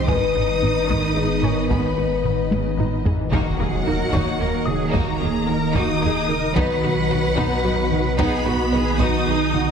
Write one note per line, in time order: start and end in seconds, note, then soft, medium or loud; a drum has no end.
0.00 3.28 D#4 medium
0.00 1.12 D#5 medium
0.00 3.28 D#5 medium
0.00 0.58 F5 medium
0.00 1.12 D#6 medium
0.00 0.58 F6 medium
0.06 3.32 G#1 medium
0.06 0.18 G#1 medium
0.06 0.32 D#3 medium
0.06 3.29 D#3 medium
0.06 0.24 G#3 loud
0.06 3.33 B3 medium
0.06 2.41 D#4 medium
0.06 1.70 D#4 medium
0.06 0.87 B4 medium
0.06 3.13 B4 medium
0.06 3.09 D#5 medium
0.06 1.70 D#6 loud
0.06 taiko loud
0.33 0.44 G#1 medium
0.33 0.41 C#3 medium
0.33 0.51 B3 medium
0.61 0.72 G#1 medium
0.61 0.69 D#3 medium
0.61 0.78 B3 medium
0.61 taiko low-mid medium
0.87 0.98 G#1 medium
0.87 1.13 D#3 medium
0.87 1.06 G#3 medium
0.87 1.15 A#4 medium
0.87 taiko medium
1.14 1.25 G#1 medium
1.14 1.22 C#3 soft
1.14 1.33 D#4 medium
1.14 1.42 G#4 medium
1.42 1.52 G#1 medium
1.42 1.51 D#3 medium
1.42 1.60 G#4 medium
1.42 1.69 A#4 medium
1.42 3.01 C#5 soft
1.42 3.01 C#6 medium
1.42 taiko low-mid medium
1.70 1.78 G#1 medium
1.70 1.95 D#3 medium
1.70 1.87 G#3 medium
1.70 2.51 B3 medium
1.70 2.92 B4 medium
1.70 2.50 B5 medium
1.70 taiko loud
1.97 2.05 G#1 soft
1.97 2.05 C#3 soft
1.97 2.14 B3 medium
2.24 2.33 G#1 soft
2.24 2.33 D#3 soft
2.24 2.41 B3 medium
2.24 taiko low-mid medium
2.51 2.60 G#1 medium
2.51 2.76 C#3 medium
2.51 2.68 G#3 medium
2.51 taiko high medium
2.77 2.87 G#1 soft
2.77 3.05 D#3 medium
2.77 2.96 D#4 medium
2.77 3.28 B4 soft
2.77 3.29 A#5 soft
2.77 taiko low-mid medium
3.05 3.13 G#1 soft
3.05 3.32 E3 medium
3.05 3.22 G#4 medium
3.05 taiko low medium
3.31 6.58 D#1 medium
3.31 3.40 D#2 medium
3.31 9.71 D#3 medium
3.31 3.49 D#3 loud
3.31 4.90 F#3 medium
3.31 3.57 A#3 medium
3.31 6.52 A#3 medium
3.31 3.57 D#4 medium
3.31 9.71 D#4 medium
3.31 3.58 F#4 medium
3.31 9.71 D#5 medium
3.31 4.90 F#5 loud
3.31 taiko loud
3.31 impact medium
3.58 3.68 D#2 medium
3.58 3.66 A#3 medium
3.58 3.76 A#3 medium
3.58 3.86 G#4 medium
3.58 3.67 A#4 medium
3.85 3.95 D#2 medium
3.85 3.95 D#3 medium
3.85 3.94 A#3 medium
3.85 3.95 D#4 medium
3.85 4.03 D#4 medium
3.85 3.93 F#4 medium
3.85 4.12 A#4 medium
4.11 4.21 D#2 medium
4.11 4.30 D#3 medium
4.11 4.36 A#3 medium
4.11 4.37 D#4 medium
4.11 4.40 F#4 medium
4.11 5.71 C#5 medium
4.11 5.71 C#6 medium
4.11 taiko medium
4.37 4.48 D#2 medium
4.37 4.46 A#3 medium
4.37 4.57 A#3 medium
4.37 4.45 A#4 medium
4.37 4.67 A#4 medium
4.65 4.76 D#3 medium
4.65 4.77 D#4 medium
4.65 4.94 G#4 medium
4.65 6.24 D#5 soft
4.65 6.24 D#6 medium
4.65 taiko mid medium
4.90 5.02 D#2 medium
4.90 5.10 D#3 loud
4.90 5.17 A#3 medium
4.90 5.73 A#3 medium
4.90 5.18 D#4 medium
4.90 5.21 F#4 medium
4.90 taiko loud
4.95 5.74 A#5 loud
5.19 5.29 D#2 medium
5.19 5.27 A#3 medium
5.19 5.37 A#3 medium
5.19 5.48 G#4 medium
5.19 5.27 A#4 medium
5.46 5.56 D#2 medium
5.46 5.58 D#3 medium
5.46 5.54 A#3 medium
5.46 5.65 D#4 medium
5.46 5.58 D#4 medium
5.46 5.54 F#4 medium
5.46 5.75 A#4 medium
5.73 5.83 D#2 medium
5.73 5.92 D#3 medium
5.73 5.99 A#3 medium
5.73 5.99 D#4 medium
5.73 6.56 D#4 loud
5.73 6.03 F#4 medium
5.73 6.56 D#6 loud
5.73 taiko medium
6.00 6.10 D#2 medium
6.00 6.08 A#3 medium
6.00 6.18 A#3 medium
6.00 6.30 G#4 medium
6.00 6.08 A#4 medium
6.00 7.60 A#5 medium
6.29 6.39 D#3 medium
6.29 6.39 D#4 medium
6.29 6.57 A#4 medium
6.29 taiko mid medium
6.55 9.71 B1 medium
6.55 6.65 B1 medium
6.55 8.16 F#3 loud
6.55 6.81 B3 loud
6.55 6.72 B3 loud
6.55 9.71 B3 medium
6.55 6.81 D#4 loud
6.55 8.15 B4 medium
6.55 8.18 F#5 loud
6.55 taiko loud
6.83 6.92 B1 medium
6.83 6.92 D#4 medium
6.83 7.00 F#4 medium
6.83 6.91 B4 medium
7.10 7.19 B1 medium
7.10 7.20 D#3 medium
7.10 7.18 B3 medium
7.10 7.20 D#4 medium
7.10 7.18 F#4 medium
7.10 7.27 B4 medium
7.36 7.46 B1 medium
7.36 7.62 B3 medium
7.36 7.54 B3 medium
7.36 7.62 D#4 loud
7.36 8.96 B4 medium
7.36 8.96 B5 medium
7.36 taiko medium
7.65 7.73 B1 medium
7.65 7.74 D#4 medium
7.65 7.81 F#4 medium
7.65 7.73 B4 medium
7.91 8.01 D#3 medium
7.91 8.01 D#4 medium
7.91 taiko mid medium
8.18 8.27 B1 loud
8.18 8.98 B3 loud
8.18 8.35 B3 loud
8.18 8.44 B3 loud
8.18 8.44 D#4 loud
8.18 8.45 G#4 loud
8.18 9.71 F#5 medium
8.18 8.98 B5 loud
8.18 taiko loud
8.45 8.54 B1 medium
8.45 8.53 D#4 medium
8.45 8.73 F#4 medium
8.45 8.62 F#4 medium
8.45 8.53 B4 medium
8.72 8.81 B1 medium
8.72 8.82 D#3 medium
8.72 8.82 B3 medium
8.72 8.82 D#4 medium
8.72 8.81 F#4 medium
8.72 8.99 G#4 loud
8.72 8.89 B4 medium
8.99 9.08 B1 medium
8.99 9.15 B3 loud
8.99 9.25 B3 loud
8.99 9.71 D#4 loud
8.99 9.25 D#4 loud
8.99 9.27 F#4 loud
8.99 9.71 D#6 loud
8.99 taiko medium
9.27 9.35 B1 medium
9.27 9.35 D#4 medium
9.27 9.43 F#4 medium
9.27 9.54 G#4 medium
9.27 9.36 B4 medium
9.53 9.62 D#3 loud
9.53 9.62 D#4 medium
9.53 9.71 F#4 loud
9.53 taiko mid medium